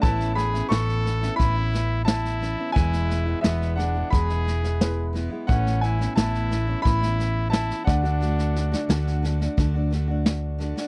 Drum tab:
SD |ooooooooo-o-ooo-|ooo-ooo-ooooo-o-|ooooooo-ooo-oooo|ooooooooo-o-o-oo|
BD |o-------o-------|o-------o-------|o-------o-----o-|--------o-------|